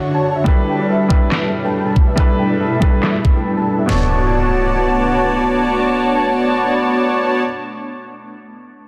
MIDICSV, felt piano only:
0, 0, Header, 1, 2, 480
1, 0, Start_track
1, 0, Key_signature, 2, "minor"
1, 0, Tempo, 428571
1, 517, Time_signature, 4, 2, 24, 8
1, 9944, End_track
2, 0, Start_track
2, 0, Title_t, "Felt piano"
2, 0, Program_c, 0, 0
2, 0, Control_c, 0, 64, 127
2, 0, Note_on_c, 0, 50, 75
2, 0, Note_on_c, 0, 62, 68
2, 0, Note_on_c, 0, 64, 69
2, 0, Note_on_c, 0, 66, 69
2, 0, Note_on_c, 0, 73, 81
2, 493, Note_on_c, 0, 55, 90
2, 504, Note_off_c, 0, 62, 0
2, 504, Note_on_c, 0, 62, 83
2, 514, Note_off_c, 0, 64, 0
2, 514, Note_on_c, 0, 64, 82
2, 526, Note_on_c, 0, 69, 83
2, 531, Control_c, 0, 64, 0
2, 533, Note_off_c, 0, 50, 0
2, 533, Note_off_c, 0, 73, 0
2, 537, Note_on_c, 0, 71, 98
2, 540, Note_off_c, 0, 66, 0
2, 756, Control_c, 0, 64, 127
2, 1197, Note_off_c, 0, 55, 0
2, 1202, Note_off_c, 0, 62, 0
2, 1208, Note_off_c, 0, 64, 0
2, 1213, Note_off_c, 0, 69, 0
2, 1214, Note_on_c, 0, 55, 76
2, 1219, Note_off_c, 0, 71, 0
2, 1225, Note_on_c, 0, 62, 67
2, 1236, Note_on_c, 0, 64, 67
2, 1247, Note_on_c, 0, 69, 66
2, 1259, Note_on_c, 0, 71, 85
2, 1804, Note_off_c, 0, 55, 0
2, 1809, Note_off_c, 0, 62, 0
2, 1815, Note_off_c, 0, 64, 0
2, 1820, Note_off_c, 0, 69, 0
2, 1826, Note_off_c, 0, 71, 0
2, 2414, Note_on_c, 0, 55, 91
2, 2425, Note_on_c, 0, 62, 82
2, 2436, Note_on_c, 0, 64, 81
2, 2447, Note_on_c, 0, 69, 83
2, 2460, Note_on_c, 0, 71, 100
2, 3118, Note_off_c, 0, 55, 0
2, 3123, Note_off_c, 0, 62, 0
2, 3128, Note_off_c, 0, 64, 0
2, 3134, Note_off_c, 0, 69, 0
2, 3135, Note_on_c, 0, 55, 72
2, 3140, Note_off_c, 0, 71, 0
2, 3146, Note_on_c, 0, 62, 67
2, 3157, Note_on_c, 0, 64, 67
2, 3167, Note_on_c, 0, 69, 68
2, 3179, Note_on_c, 0, 71, 84
2, 3724, Note_off_c, 0, 55, 0
2, 3729, Note_off_c, 0, 62, 0
2, 3735, Note_off_c, 0, 64, 0
2, 3740, Note_off_c, 0, 69, 0
2, 3746, Note_off_c, 0, 71, 0
2, 4322, Note_on_c, 0, 47, 78
2, 4339, Note_on_c, 0, 59, 71
2, 4355, Note_on_c, 0, 62, 69
2, 4369, Control_c, 0, 64, 0
2, 4373, Note_on_c, 0, 69, 72
2, 4389, Note_on_c, 0, 85, 87
2, 4589, Control_c, 0, 64, 127
2, 8284, Note_off_c, 0, 47, 0
2, 8301, Note_off_c, 0, 59, 0
2, 8318, Note_off_c, 0, 62, 0
2, 8335, Note_off_c, 0, 69, 0
2, 8351, Note_off_c, 0, 85, 0
2, 9944, End_track
0, 0, End_of_file